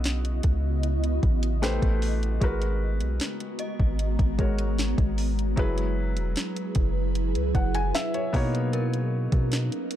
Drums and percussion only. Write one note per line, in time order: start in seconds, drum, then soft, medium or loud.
0.04 snare loud
0.04 closed hi-hat medium
0.25 closed hi-hat medium
0.43 kick medium
0.43 closed hi-hat medium
0.83 closed hi-hat medium
1.04 closed hi-hat soft
1.23 kick loud
1.23 closed hi-hat soft
1.43 closed hi-hat medium
1.63 snare loud
1.63 closed hi-hat medium
1.82 kick loud
1.82 closed hi-hat medium
2.02 open hi-hat medium
2.23 closed hi-hat soft
2.41 kick loud
2.41 closed hi-hat medium
2.62 closed hi-hat medium
3.01 closed hi-hat medium
3.20 snare loud
3.20 closed hi-hat medium
3.40 closed hi-hat medium
3.59 closed hi-hat medium
3.80 kick medium
3.99 closed hi-hat medium
4.19 kick loud
4.19 closed hi-hat medium
4.39 kick loud
4.39 closed hi-hat soft
4.59 closed hi-hat medium
4.79 snare loud
4.79 closed hi-hat medium
4.98 kick loud
4.98 closed hi-hat soft
5.18 open hi-hat medium
5.39 closed hi-hat medium
5.57 kick loud
5.57 closed hi-hat medium
5.78 closed hi-hat medium
6.17 closed hi-hat medium
6.36 snare loud
6.36 closed hi-hat medium
6.56 closed hi-hat medium
6.75 kick medium
6.75 closed hi-hat medium
7.15 closed hi-hat medium
7.35 closed hi-hat medium
7.55 kick loud
7.55 closed hi-hat soft
7.75 closed hi-hat medium
7.95 snare loud
7.95 closed hi-hat medium
8.14 closed hi-hat soft
8.34 kick loud
8.34 open hi-hat medium
8.55 closed hi-hat medium
8.73 closed hi-hat medium
8.94 closed hi-hat medium
9.32 kick loud
9.32 closed hi-hat medium
9.52 snare loud
9.52 closed hi-hat medium
9.72 closed hi-hat medium
9.91 closed hi-hat medium